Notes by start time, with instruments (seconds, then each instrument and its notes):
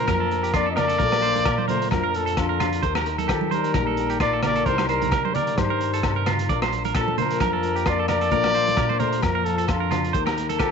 Already playing: nylon-string guitar A#2 A#3 F4 A#4, trombone F3, trumpet A#4
0.07 upright bass F2, nylon-string guitar D4, clean electric guitar A#4, kick, cross-stick, closed hi-hat, high conga, low agogo
0.20 clean electric guitar A4
0.31 muted nylon-string guitar stroke, closed hi-hat
0.43 clean electric guitar G4, closed hi-hat
0.54 nylon-string guitar F2 D4, trombone A#3, clean electric guitar F4, trumpet D5, kick, cross-stick, closed hi-hat, low agogo
0.66 clean electric guitar A4
0.71 trombone C4, trumpet D#5
0.76 trombone A#3, nylon-string guitar F4, clean electric guitar A#4, trumpet D5, cross-stick, closed hi-hat, low conga, low agogo
0.88 clean electric guitar A4, closed hi-hat
0.98 upright bass A#1, nylon-string guitar A#2 D4 F4 A4, clean electric guitar A#4, kick, closed hi-hat
1.12 cross-stick, high conga, low agogo
1.22 nylon-string guitar F4, clean electric guitar C5, closed hi-hat
1.35 closed hi-hat, high conga
1.45 upright bass A#2, clean electric guitar A#4, kick, cross-stick, closed hi-hat, low agogo
1.58 clean electric guitar C5, high conga
1.68 trombone A3, nylon-string guitar A#3 F4, clean electric guitar A#4, trumpet C5, closed hi-hat, high conga, low conga
1.82 closed hi-hat
1.91 upright bass F2, trombone F3, nylon-string guitar D4, trumpet A#4, muted clean electric guitar stroke, kick, cross-stick, closed hi-hat, high conga, low agogo
2.04 clean electric guitar A#4
2.14 trombone F3, nylon-string guitar F4, trumpet A4, closed hi-hat
2.26 clean electric guitar A4, closed hi-hat
2.37 nylon-string guitar F2 D4, trombone D3, trumpet F4, kick, cross-stick, closed hi-hat, low agogo
2.49 clean electric guitar A#4
2.60 nylon-string guitar D4, clean electric guitar F4, cross-stick, closed hi-hat, low conga, low agogo
2.73 closed hi-hat
2.83 upright bass D#2, nylon-string guitar D#3 G4 A#4, clean electric guitar C5, kick, closed hi-hat
2.95 clean electric guitar A#4, cross-stick, high conga, low agogo
3.06 nylon-string guitar A#4, closed hi-hat
3.18 clean electric guitar A4, closed hi-hat, high conga
3.28 upright bass D#3, trombone F3, clean electric guitar G4, nylon-string guitar G4, trumpet A4, kick, cross-stick, closed hi-hat, low agogo
3.41 high conga
3.51 trombone G3, nylon-string guitar D#4 G4, trumpet A#4, clean electric guitar C5, closed hi-hat, high conga
3.64 closed hi-hat
3.74 upright bass A#1, nylon-string guitar G4, clean electric guitar A#4, kick, cross-stick, closed hi-hat, high conga, low agogo
3.87 clean electric guitar A4
3.97 nylon-string guitar G4, closed hi-hat
4.10 clean electric guitar G4, closed hi-hat
4.20 nylon-string guitar A#2, trombone A#3, clean electric guitar F4, trumpet D5, kick, cross-stick, closed hi-hat, low agogo
4.33 clean electric guitar A4
4.43 trombone A#3, clean electric guitar A#4, nylon-string guitar A#4, trumpet D5, cross-stick, closed hi-hat, low conga, low agogo
4.55 clean electric guitar A4, closed hi-hat
4.66 upright bass C2, nylon-string guitar C3 D#4 G4 A#4, trombone G3, clean electric guitar A#4, trumpet C5, kick, closed hi-hat
4.78 cross-stick, high conga, low agogo
4.88 trombone G3, nylon-string guitar G4, trumpet A#4, clean electric guitar C5, closed hi-hat
5.02 closed hi-hat, high conga, low conga
5.11 upright bass C3, nylon-string guitar D#4, clean electric guitar A#4, kick, cross-stick, closed hi-hat, low agogo
5.25 clean electric guitar C5, high conga
5.34 nylon-string guitar D#3 G4, trombone A#3, clean electric guitar A#4, trumpet D5, closed hi-hat, high conga, low conga
5.47 closed hi-hat
5.58 upright bass G2, trombone G3, nylon-string guitar D#4, trumpet C5, muted clean electric guitar stroke, kick, cross-stick, closed hi-hat, high conga, low agogo
5.70 clean electric guitar A#4
5.81 nylon-string guitar G4, closed hi-hat
5.93 clean electric guitar A4, closed hi-hat
6.03 nylon-string guitar C3 D#4, kick, cross-stick, closed hi-hat, low agogo
6.16 clean electric guitar A#4
6.26 clean electric guitar F4, nylon-string guitar G4, cross-stick, closed hi-hat, low conga, low agogo
6.39 closed hi-hat
6.49 upright bass A#1, nylon-string guitar D4 F4 A#4, clean electric guitar D5, muted nylon-string guitar stroke, kick, closed hi-hat
6.62 clean electric guitar C5, cross-stick, high conga, low agogo
6.73 nylon-string guitar F4, closed hi-hat
6.85 clean electric guitar A#4, closed hi-hat, high conga
6.95 upright bass A#2, trombone F3, nylon-string guitar D4, clean electric guitar A4, trumpet A4, kick, cross-stick, closed hi-hat, low agogo
7.08 high conga
7.18 trombone F3, nylon-string guitar A#3 F4, trumpet A#4, clean electric guitar C5, closed hi-hat, high conga, low conga
7.30 closed hi-hat
7.40 upright bass F2, nylon-string guitar D4, clean electric guitar A#4, kick, cross-stick, closed hi-hat, high conga, low agogo
7.53 clean electric guitar A4
7.63 nylon-string guitar F4, closed hi-hat
7.76 clean electric guitar G4, closed hi-hat
7.86 nylon-string guitar F2 D4, trombone A#3, clean electric guitar F4, trumpet D5, kick, cross-stick, closed hi-hat, low agogo
7.99 clean electric guitar A4
8.08 trombone A#3, nylon-string guitar F4, clean electric guitar A#4, trumpet D5, cross-stick, closed hi-hat, low conga, low agogo
8.21 clean electric guitar A4, closed hi-hat
8.31 upright bass A#1, nylon-string guitar A#2 D4 F4 A4, clean electric guitar A#4, kick, closed hi-hat
8.44 cross-stick, high conga, low agogo
8.54 nylon-string guitar F4, clean electric guitar C5, closed hi-hat
8.67 closed hi-hat, high conga
8.77 upright bass A#2, nylon-string guitar D4, clean electric guitar A#4, kick, cross-stick, closed hi-hat, low agogo
8.89 clean electric guitar C5, high conga
8.99 trombone A3, nylon-string guitar A#3, clean electric guitar A#4, trumpet C5, closed hi-hat, high conga, low conga
9.12 closed hi-hat
9.22 upright bass F2, trombone F3, trumpet A#4, muted clean electric guitar stroke, muted nylon-string guitar stroke, kick, cross-stick, closed hi-hat, high conga, low agogo
9.35 clean electric guitar A#4
9.45 trombone F3, nylon-string guitar F4, trumpet A4, closed hi-hat
9.58 clean electric guitar A4, closed hi-hat
9.68 nylon-string guitar F2 D4, trombone D3, trumpet F4, kick, cross-stick, closed hi-hat, low agogo
9.80 clean electric guitar A#4
9.91 nylon-string guitar D4, clean electric guitar F4, cross-stick, closed hi-hat, low conga, low agogo
10.04 closed hi-hat
10.13 upright bass D#2, nylon-string guitar D#3 G4 A#4, clean electric guitar C5, kick, closed hi-hat
10.26 clean electric guitar A#4, cross-stick, high conga, low agogo
10.37 nylon-string guitar A#4, closed hi-hat
10.49 clean electric guitar A4, closed hi-hat, high conga
10.59 upright bass D#3, trombone F3, clean electric guitar G4, nylon-string guitar G4, trumpet A4, kick, cross-stick, closed hi-hat, low agogo